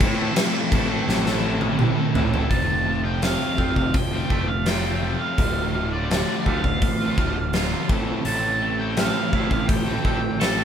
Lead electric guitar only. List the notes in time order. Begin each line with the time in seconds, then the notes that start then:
Already playing: C6
2.49 A5
3.04 G5
3.23 F5
3.77 F5
3.95 G5
4.48 F5
4.66 G5
5.20 F5
5.92 D5
6.47 F5
8.25 A5
8.79 G5
8.99 F5
9.50 F5
9.68 G5
10.40 A5